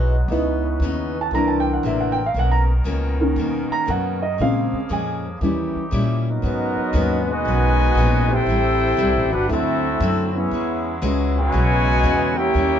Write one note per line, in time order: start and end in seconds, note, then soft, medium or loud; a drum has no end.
0.00 0.27 B1 medium
0.00 0.14 E3 medium
0.00 0.25 F#3 soft
0.00 2.29 F#3 medium
0.00 0.15 G#3 medium
0.00 0.26 G#3 soft
0.00 0.26 G#3 medium
0.00 1.27 B3 medium
0.00 0.15 D#4 medium
0.00 0.26 D#4 medium
0.00 0.15 F#4 medium
0.00 0.25 F#4 medium
0.00 0.25 C#5 medium
0.28 0.79 C#2 medium
0.28 0.65 C#3 soft
0.28 0.66 E3 soft
0.28 1.28 B3 soft
0.28 1.30 C#4 medium
0.28 1.29 D#4 medium
0.28 1.28 E4 soft
0.28 1.30 B4 medium
0.32 0.66 B3 medium
0.32 0.67 D#4 medium
0.80 1.30 D#2 medium
0.80 1.17 C#3 medium
0.80 1.17 E3 medium
0.80 1.18 B3 medium
0.84 1.18 D#4 medium
1.21 1.31 A5 medium
1.31 1.81 C2 medium
1.31 1.68 C3 soft
1.31 2.14 E3 soft
1.31 1.69 E3 soft
1.31 2.14 A#3 soft
1.31 2.34 C4 medium
1.31 2.34 D4 medium
1.31 2.14 D4 soft
1.31 4.36 A#4 medium
1.31 1.50 A#5 medium
1.35 1.69 A#3 soft
1.35 1.70 D4 medium
1.48 1.65 A5 medium
1.60 1.71 G5 medium
1.73 1.82 F#5 medium
1.83 2.33 A1 medium
1.83 2.19 C3 medium
1.83 2.20 E3 medium
1.83 2.20 A#3 medium
1.83 2.20 D4 medium
1.83 2.01 E5 medium
2.00 2.17 F#5 medium
2.12 2.23 G5 medium
2.26 2.34 F5 medium
2.34 2.84 B1 medium
2.34 2.70 B2 soft
2.34 4.38 B2 medium
2.34 6.25 C#3 medium
2.34 4.38 D#3 medium
2.34 2.71 D#3 soft
2.34 2.71 A#3 soft
2.38 2.72 C#4 medium
2.38 2.53 F#5 medium
2.52 2.62 A#5 medium
2.84 3.35 C#2 loud
2.84 3.21 B2 medium
2.84 3.21 D#3 medium
2.84 3.21 A#3 medium
2.84 3.22 C#4 medium
3.21 3.85 D#3 medium
3.21 3.85 A#3 soft
3.21 3.86 C#4 medium
3.36 3.68 D#2 medium
3.36 3.72 B2 medium
3.36 3.73 D#3 medium
3.36 3.74 A#3 medium
3.36 3.74 C#4 medium
3.70 3.88 A#5 medium
3.70 muted upright bass stroke soft
3.86 4.38 F#2 loud
3.86 4.22 B2 medium
3.86 4.23 D#3 medium
3.86 4.23 A#3 medium
3.86 4.24 C#4 medium
3.90 4.22 F#5 medium
4.22 4.39 D#5 medium
4.38 4.74 A#2 soft
4.38 4.71 A#2 medium
4.38 4.79 C#3 medium
4.38 5.40 F3 medium
4.38 4.75 F3 soft
4.38 4.75 G#3 soft
4.38 4.79 G#3 soft
4.38 5.41 A#3 medium
4.38 4.79 C4 medium
4.38 4.76 C#4 soft
4.38 5.41 G#4 medium
4.38 4.88 F5 medium
4.73 muted upright bass stroke soft
4.89 5.40 F2 medium
4.89 5.25 A#2 medium
4.89 5.26 F3 medium
4.89 5.26 G#3 medium
4.89 5.26 C#4 medium
4.89 5.12 G#5 medium
5.40 5.73 D#2 medium
5.40 5.77 D#3 medium
5.40 6.25 E3 medium
5.40 5.81 E3 soft
5.40 5.78 G3 medium
5.40 5.81 G3 soft
5.40 5.81 C#4 soft
5.40 5.78 C#4 medium
5.40 6.25 D#4 medium
5.40 6.25 G4 medium
5.44 5.78 E4 medium
5.75 muted upright bass stroke soft
5.91 6.42 A#2 medium
5.91 6.27 D#3 medium
5.91 6.28 G3 medium
5.91 6.28 C#4 medium
5.91 6.29 E4 medium
6.27 7.25 F#3 medium
6.27 7.25 B3 medium
6.27 7.27 B3 medium
6.27 7.25 D#4 medium
6.27 7.27 A#4 medium
6.31 7.27 F#4 medium
6.31 7.27 D#5 medium
6.42 6.79 G#2 soft
6.42 6.75 G#2 medium
6.42 8.45 C#3 medium
6.42 6.79 F#3 medium
6.42 8.46 G#3 medium
6.42 8.45 B3 medium
6.42 6.80 B3 medium
6.42 6.80 C#4 medium
6.42 8.45 F#4 medium
6.77 muted upright bass stroke soft
6.93 7.44 D#2 loud
6.93 7.29 G#2 medium
6.93 7.30 F#3 medium
6.93 7.30 B3 medium
6.93 7.31 C#4 medium
7.28 8.30 B2 loud
7.28 8.31 D#3 loud
7.28 8.30 G#3 loud
7.28 8.32 F#4 medium
7.32 8.33 B4 medium
7.32 8.33 D#5 loud
7.32 8.33 G#5 loud
7.45 7.95 B1 medium
7.45 7.81 G#2 soft
7.45 7.81 F#3 soft
7.45 7.82 B3 medium
7.45 7.82 C#4 medium
7.95 8.45 A#1 loud
7.95 8.32 G#2 medium
7.95 8.33 F#3 medium
7.95 8.33 B3 medium
7.95 8.33 C#4 medium
8.28 9.31 C4 medium
8.28 9.32 E4 medium
8.28 9.31 G4 medium
8.33 9.34 E4 medium
8.33 9.34 A4 medium
8.33 9.34 C5 medium
8.33 9.34 G5 loud
8.45 8.96 A1 medium
8.45 8.83 A2 medium
8.45 9.48 C3 medium
8.45 9.47 G3 medium
8.45 9.47 A3 medium
8.45 9.47 E4 medium
8.49 8.84 G3 medium
8.49 8.84 C4 medium
8.49 8.85 E4 medium
8.97 9.15 C2 loud
8.97 9.33 A2 medium
8.97 9.34 G3 medium
8.97 9.34 C4 medium
8.97 9.34 E4 medium
9.15 9.32 A1 medium
9.31 9.48 G1 medium
9.31 9.50 D4 medium
9.31 9.49 F#4 medium
9.31 9.50 G4 medium
9.31 9.50 B4 medium
9.31 9.50 F#5 medium
9.48 9.99 D2 medium
9.48 10.50 D3 medium
9.48 9.85 D3 medium
9.48 10.49 F#3 medium
9.48 10.29 A3 medium
9.48 10.29 C4 medium
9.48 10.49 C4 medium
9.48 10.29 E4 medium
9.48 12.51 E4 medium
9.48 10.31 E5 medium
9.52 9.86 F#3 soft
9.52 10.31 C4 medium
9.52 9.86 C4 medium
9.52 9.87 E4 medium
9.52 10.31 F#4 medium
9.52 10.32 A4 medium
10.00 10.50 F#2 loud
10.00 10.36 D3 medium
10.00 10.37 F#3 medium
10.00 10.37 C4 medium
10.00 10.37 E4 medium
10.33 10.96 B3 medium
10.33 10.96 C#4 medium
10.33 10.98 C#4 medium
10.33 10.97 E4 medium
10.33 10.98 G#4 medium
10.33 10.98 E5 medium
10.37 10.99 B4 medium
10.50 11.01 E2 medium
10.50 12.79 C#3 medium
10.50 10.87 E3 soft
10.50 12.52 F#3 medium
10.50 12.52 G#3 medium
10.50 10.88 G#3 soft
10.50 10.88 C#4 medium
10.54 10.88 F#4 medium
11.02 11.51 C#2 loud
11.02 11.37 E3 medium
11.02 11.38 G#3 medium
11.02 11.38 C#4 loud
11.02 11.38 F#4 medium
11.36 12.34 B2 loud
11.36 12.34 C#3 loud
11.36 12.34 G#3 loud
11.36 12.34 F#4 loud
11.36 12.34 B4 loud
11.36 12.35 C#5 loud
11.36 12.34 G#5 loud
11.52 12.03 B1 loud
11.52 11.88 E3 medium
11.52 11.89 G#3 soft
11.52 11.89 C#4 medium
11.52 11.89 F#4 medium
12.03 12.53 E2 loud
12.03 12.39 E3 medium
12.03 12.39 G#3 medium
12.03 12.40 C#4 medium
12.03 12.40 F#4 medium
12.35 12.79 A#3 medium
12.35 12.79 C#4 medium
12.35 12.79 E4 medium
12.35 12.79 G4 medium
12.35 12.79 A#4 medium
12.35 12.79 C#5 medium
12.35 12.79 G5 loud
12.54 12.79 D#2 medium
12.54 12.79 D#3 soft
12.54 12.79 D#3 medium
12.54 12.79 E3 medium
12.54 12.79 G3 soft
12.54 12.79 A#3 medium
12.54 12.79 C#4 medium
12.54 12.79 E4 medium